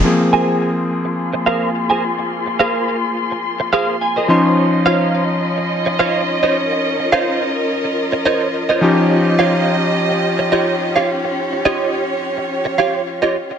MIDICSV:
0, 0, Header, 1, 5, 480
1, 0, Start_track
1, 0, Key_signature, -4, "major"
1, 0, Tempo, 566038
1, 42, Time_signature, 4, 2, 24, 8
1, 11521, End_track
2, 0, Start_track
2, 0, Title_t, "Clean electric guitar"
2, 0, Program_c, 0, 27
2, 279, Note_on_c, 0, 80, 114
2, 283, Note_on_c, 0, 72, 89
2, 286, Note_on_c, 0, 70, 74
2, 288, Note_on_c, 0, 68, 81
2, 587, Note_off_c, 0, 68, 0
2, 587, Note_off_c, 0, 70, 0
2, 587, Note_off_c, 0, 72, 0
2, 587, Note_off_c, 0, 80, 0
2, 1241, Note_on_c, 0, 77, 113
2, 1244, Note_on_c, 0, 72, 90
2, 1246, Note_on_c, 0, 70, 77
2, 1248, Note_on_c, 0, 68, 86
2, 1427, Note_off_c, 0, 68, 0
2, 1427, Note_off_c, 0, 70, 0
2, 1428, Note_off_c, 0, 72, 0
2, 1428, Note_off_c, 0, 77, 0
2, 1609, Note_on_c, 0, 80, 80
2, 1613, Note_on_c, 0, 72, 67
2, 1616, Note_on_c, 0, 70, 65
2, 1618, Note_on_c, 0, 68, 64
2, 1722, Note_off_c, 0, 68, 0
2, 1722, Note_off_c, 0, 70, 0
2, 1722, Note_off_c, 0, 72, 0
2, 1722, Note_off_c, 0, 80, 0
2, 2200, Note_on_c, 0, 77, 107
2, 2203, Note_on_c, 0, 72, 89
2, 2205, Note_on_c, 0, 70, 81
2, 2209, Note_on_c, 0, 68, 85
2, 2507, Note_off_c, 0, 68, 0
2, 2507, Note_off_c, 0, 70, 0
2, 2508, Note_off_c, 0, 72, 0
2, 2508, Note_off_c, 0, 77, 0
2, 3160, Note_on_c, 0, 77, 108
2, 3163, Note_on_c, 0, 72, 89
2, 3165, Note_on_c, 0, 70, 83
2, 3169, Note_on_c, 0, 68, 97
2, 3347, Note_off_c, 0, 68, 0
2, 3347, Note_off_c, 0, 70, 0
2, 3348, Note_off_c, 0, 72, 0
2, 3348, Note_off_c, 0, 77, 0
2, 3403, Note_on_c, 0, 80, 65
2, 3530, Note_on_c, 0, 72, 73
2, 3536, Note_on_c, 0, 75, 80
2, 3537, Note_on_c, 0, 70, 65
2, 3543, Note_on_c, 0, 68, 78
2, 3626, Note_off_c, 0, 80, 0
2, 3632, Note_off_c, 0, 72, 0
2, 3632, Note_off_c, 0, 75, 0
2, 3639, Note_on_c, 0, 73, 77
2, 3642, Note_off_c, 0, 68, 0
2, 3642, Note_off_c, 0, 70, 0
2, 3643, Note_on_c, 0, 75, 86
2, 3645, Note_off_c, 0, 75, 0
2, 3645, Note_on_c, 0, 75, 69
2, 3648, Note_on_c, 0, 72, 62
2, 3651, Note_on_c, 0, 65, 69
2, 3662, Note_off_c, 0, 75, 0
2, 3934, Note_off_c, 0, 65, 0
2, 3934, Note_off_c, 0, 72, 0
2, 3935, Note_off_c, 0, 73, 0
2, 4119, Note_on_c, 0, 77, 113
2, 4121, Note_on_c, 0, 72, 91
2, 4127, Note_on_c, 0, 73, 90
2, 4130, Note_on_c, 0, 65, 97
2, 4427, Note_off_c, 0, 65, 0
2, 4427, Note_off_c, 0, 72, 0
2, 4427, Note_off_c, 0, 73, 0
2, 4428, Note_off_c, 0, 77, 0
2, 5082, Note_on_c, 0, 77, 115
2, 5083, Note_on_c, 0, 72, 91
2, 5087, Note_on_c, 0, 73, 96
2, 5089, Note_on_c, 0, 65, 88
2, 5268, Note_off_c, 0, 65, 0
2, 5268, Note_off_c, 0, 72, 0
2, 5268, Note_off_c, 0, 73, 0
2, 5269, Note_off_c, 0, 77, 0
2, 5451, Note_on_c, 0, 75, 86
2, 5453, Note_on_c, 0, 73, 69
2, 5456, Note_on_c, 0, 72, 71
2, 5458, Note_on_c, 0, 65, 64
2, 5562, Note_off_c, 0, 65, 0
2, 5562, Note_off_c, 0, 72, 0
2, 5563, Note_off_c, 0, 73, 0
2, 5563, Note_off_c, 0, 75, 0
2, 6040, Note_on_c, 0, 77, 111
2, 6043, Note_on_c, 0, 73, 81
2, 6045, Note_on_c, 0, 72, 84
2, 6047, Note_on_c, 0, 65, 82
2, 6347, Note_off_c, 0, 65, 0
2, 6347, Note_off_c, 0, 72, 0
2, 6348, Note_off_c, 0, 73, 0
2, 6348, Note_off_c, 0, 77, 0
2, 7000, Note_on_c, 0, 75, 115
2, 7003, Note_on_c, 0, 73, 93
2, 7006, Note_on_c, 0, 72, 81
2, 7008, Note_on_c, 0, 65, 91
2, 7187, Note_off_c, 0, 65, 0
2, 7188, Note_off_c, 0, 72, 0
2, 7188, Note_off_c, 0, 73, 0
2, 7188, Note_off_c, 0, 75, 0
2, 7370, Note_on_c, 0, 75, 87
2, 7375, Note_on_c, 0, 73, 69
2, 7378, Note_on_c, 0, 72, 70
2, 7382, Note_on_c, 0, 65, 64
2, 7474, Note_off_c, 0, 65, 0
2, 7474, Note_off_c, 0, 73, 0
2, 7476, Note_off_c, 0, 75, 0
2, 7482, Note_on_c, 0, 75, 79
2, 7483, Note_off_c, 0, 72, 0
2, 7484, Note_on_c, 0, 73, 67
2, 7489, Note_on_c, 0, 67, 69
2, 7494, Note_on_c, 0, 65, 69
2, 7775, Note_off_c, 0, 65, 0
2, 7776, Note_off_c, 0, 67, 0
2, 7776, Note_off_c, 0, 73, 0
2, 7776, Note_off_c, 0, 75, 0
2, 7961, Note_on_c, 0, 77, 107
2, 7965, Note_on_c, 0, 73, 96
2, 7970, Note_on_c, 0, 67, 91
2, 7972, Note_on_c, 0, 65, 89
2, 8268, Note_off_c, 0, 65, 0
2, 8269, Note_off_c, 0, 67, 0
2, 8269, Note_off_c, 0, 73, 0
2, 8269, Note_off_c, 0, 77, 0
2, 8921, Note_on_c, 0, 75, 107
2, 8925, Note_on_c, 0, 73, 86
2, 8927, Note_on_c, 0, 67, 83
2, 8929, Note_on_c, 0, 65, 84
2, 9108, Note_off_c, 0, 65, 0
2, 9108, Note_off_c, 0, 67, 0
2, 9108, Note_off_c, 0, 73, 0
2, 9108, Note_off_c, 0, 75, 0
2, 9291, Note_on_c, 0, 77, 87
2, 9294, Note_on_c, 0, 73, 76
2, 9299, Note_on_c, 0, 67, 67
2, 9301, Note_on_c, 0, 65, 70
2, 9402, Note_off_c, 0, 65, 0
2, 9403, Note_off_c, 0, 67, 0
2, 9403, Note_off_c, 0, 73, 0
2, 9404, Note_off_c, 0, 77, 0
2, 9882, Note_on_c, 0, 75, 122
2, 9883, Note_on_c, 0, 73, 99
2, 9885, Note_on_c, 0, 67, 85
2, 9888, Note_on_c, 0, 65, 88
2, 10187, Note_off_c, 0, 65, 0
2, 10187, Note_off_c, 0, 67, 0
2, 10188, Note_off_c, 0, 73, 0
2, 10188, Note_off_c, 0, 75, 0
2, 10839, Note_on_c, 0, 77, 101
2, 10844, Note_on_c, 0, 73, 87
2, 10846, Note_on_c, 0, 67, 87
2, 10849, Note_on_c, 0, 65, 90
2, 11027, Note_off_c, 0, 65, 0
2, 11027, Note_off_c, 0, 67, 0
2, 11028, Note_off_c, 0, 73, 0
2, 11028, Note_off_c, 0, 77, 0
2, 11210, Note_on_c, 0, 75, 85
2, 11214, Note_on_c, 0, 73, 72
2, 11215, Note_on_c, 0, 67, 70
2, 11218, Note_on_c, 0, 65, 68
2, 11322, Note_off_c, 0, 65, 0
2, 11322, Note_off_c, 0, 67, 0
2, 11323, Note_off_c, 0, 73, 0
2, 11323, Note_off_c, 0, 75, 0
2, 11521, End_track
3, 0, Start_track
3, 0, Title_t, "String section"
3, 0, Program_c, 1, 48
3, 42, Note_on_c, 1, 58, 69
3, 43, Note_on_c, 1, 65, 62
3, 44, Note_on_c, 1, 84, 75
3, 46, Note_on_c, 1, 68, 60
3, 3608, Note_off_c, 1, 58, 0
3, 3609, Note_off_c, 1, 65, 0
3, 3610, Note_off_c, 1, 68, 0
3, 3640, Note_on_c, 1, 65, 67
3, 3642, Note_on_c, 1, 61, 75
3, 3643, Note_on_c, 1, 75, 80
3, 5530, Note_off_c, 1, 84, 0
3, 5564, Note_on_c, 1, 70, 84
3, 7448, Note_off_c, 1, 61, 0
3, 7449, Note_off_c, 1, 75, 0
3, 7464, Note_off_c, 1, 70, 0
3, 7479, Note_on_c, 1, 61, 72
3, 7479, Note_on_c, 1, 75, 84
3, 7482, Note_on_c, 1, 67, 62
3, 9382, Note_off_c, 1, 75, 0
3, 9399, Note_on_c, 1, 73, 78
3, 11521, Note_off_c, 1, 61, 0
3, 11521, Note_off_c, 1, 65, 0
3, 11521, Note_off_c, 1, 67, 0
3, 11521, Note_off_c, 1, 73, 0
3, 11521, End_track
4, 0, Start_track
4, 0, Title_t, "Electric grand piano"
4, 0, Program_c, 2, 2
4, 33, Note_on_c, 2, 53, 70
4, 38, Note_on_c, 2, 58, 65
4, 44, Note_on_c, 2, 60, 60
4, 50, Note_on_c, 2, 68, 71
4, 3612, Note_off_c, 2, 53, 0
4, 3614, Note_off_c, 2, 58, 0
4, 3617, Note_off_c, 2, 60, 0
4, 3620, Note_off_c, 2, 68, 0
4, 3631, Note_on_c, 2, 53, 71
4, 3636, Note_on_c, 2, 61, 68
4, 3642, Note_on_c, 2, 63, 67
4, 3647, Note_on_c, 2, 84, 80
4, 7450, Note_off_c, 2, 53, 0
4, 7453, Note_off_c, 2, 61, 0
4, 7456, Note_off_c, 2, 63, 0
4, 7459, Note_off_c, 2, 84, 0
4, 7471, Note_on_c, 2, 53, 76
4, 7477, Note_on_c, 2, 61, 64
4, 7483, Note_on_c, 2, 63, 66
4, 7489, Note_on_c, 2, 67, 81
4, 11291, Note_off_c, 2, 53, 0
4, 11294, Note_off_c, 2, 61, 0
4, 11296, Note_off_c, 2, 63, 0
4, 11300, Note_off_c, 2, 67, 0
4, 11521, End_track
5, 0, Start_track
5, 0, Title_t, "Muted clean electric guitar strokes"
5, 172, Note_on_c, 9, 29, 25
5, 257, Note_off_c, 9, 29, 0
5, 889, Note_on_c, 9, 29, 30
5, 974, Note_off_c, 9, 29, 0
5, 1131, Note_on_c, 9, 29, 79
5, 1216, Note_off_c, 9, 29, 0
5, 1849, Note_on_c, 9, 29, 26
5, 1933, Note_off_c, 9, 29, 0
5, 2089, Note_on_c, 9, 29, 27
5, 2174, Note_off_c, 9, 29, 0
5, 2811, Note_on_c, 9, 29, 30
5, 2895, Note_off_c, 9, 29, 0
5, 3051, Note_on_c, 9, 29, 81
5, 3136, Note_off_c, 9, 29, 0
5, 4010, Note_on_c, 9, 29, 29
5, 4095, Note_off_c, 9, 29, 0
5, 4730, Note_on_c, 9, 29, 34
5, 4815, Note_off_c, 9, 29, 0
5, 4971, Note_on_c, 9, 29, 77
5, 5056, Note_off_c, 9, 29, 0
5, 5690, Note_on_c, 9, 29, 28
5, 5774, Note_off_c, 9, 29, 0
5, 5931, Note_on_c, 9, 29, 27
5, 6016, Note_off_c, 9, 29, 0
5, 6650, Note_on_c, 9, 29, 33
5, 6735, Note_off_c, 9, 29, 0
5, 6889, Note_on_c, 9, 29, 78
5, 6974, Note_off_c, 9, 29, 0
5, 7853, Note_on_c, 9, 29, 28
5, 7938, Note_off_c, 9, 29, 0
5, 8572, Note_on_c, 9, 29, 30
5, 8657, Note_off_c, 9, 29, 0
5, 8811, Note_on_c, 9, 29, 74
5, 8896, Note_off_c, 9, 29, 0
5, 9534, Note_on_c, 9, 29, 29
5, 9619, Note_off_c, 9, 29, 0
5, 9774, Note_on_c, 9, 29, 27
5, 9859, Note_off_c, 9, 29, 0
5, 10490, Note_on_c, 9, 29, 28
5, 10575, Note_off_c, 9, 29, 0
5, 10728, Note_on_c, 9, 29, 69
5, 10813, Note_off_c, 9, 29, 0
5, 11451, Note_on_c, 9, 29, 27
5, 11521, Note_off_c, 9, 29, 0
5, 11521, End_track
0, 0, End_of_file